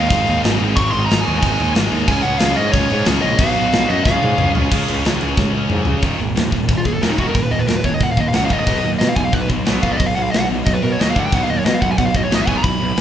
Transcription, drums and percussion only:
0.10 kick, crash
0.27 crash
0.44 snare, crash
0.60 crash
0.76 kick, crash
0.94 crash
1.10 snare, crash
1.27 crash
1.42 kick, crash
1.60 crash
1.75 snare, crash
1.92 crash
2.08 kick, crash
2.25 crash
2.39 snare, crash
2.57 crash
2.73 kick, crash
2.90 crash
3.05 snare, crash
3.22 crash
3.38 kick, crash
3.56 crash
3.72 snare, crash
3.90 crash
4.05 kick, snare
4.23 high tom
4.38 mid tom
4.55 floor tom
4.72 kick, crash
4.88 ride
5.05 snare, ride
5.21 ride
5.37 kick, snare
5.70 mid tom
5.85 floor tom
6.02 kick, open hi-hat
6.36 snare, open hi-hat
6.52 kick
6.69 kick, open hi-hat
6.85 kick
7.02 snare, open hi-hat
7.18 kick
7.35 kick, open hi-hat
7.67 snare, open hi-hat
7.84 kick
7.99 kick, open hi-hat
8.17 kick
8.33 snare, open hi-hat
8.50 kick
8.66 kick, open hi-hat
9.00 snare, open hi-hat
9.16 kick
9.32 kick, open hi-hat
9.50 kick
9.66 snare, open hi-hat
9.83 kick
10.00 kick, open hi-hat
10.33 snare, open hi-hat
10.67 kick, open hi-hat
11.00 snare, open hi-hat
11.16 kick
11.32 kick, open hi-hat
11.65 snare, open hi-hat
11.82 kick
11.98 kick, open hi-hat
12.14 kick
12.31 snare, open hi-hat
12.47 kick
12.64 kick, open hi-hat
12.97 snare, open hi-hat

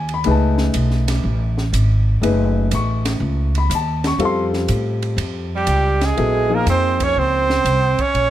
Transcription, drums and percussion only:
0.09 ride
0.24 ride
0.58 snare
0.74 hi-hat pedal, ride
0.91 snare
1.08 snare, ride
1.58 snare
1.73 hi-hat pedal, ride
2.23 ride
2.71 hi-hat pedal, ride
3.05 snare, ride
3.55 ride
3.71 hi-hat pedal, ride
4.04 snare, ride
4.20 ride
4.53 snare
4.68 hi-hat pedal, ride
5.02 ride
5.18 ride
5.67 hi-hat pedal, ride
6.01 snare, ride
6.17 ride
6.67 hi-hat pedal, ride
7.00 kick, ride
7.50 snare
7.65 hi-hat pedal, ride
7.99 kick, ride
8.15 ride

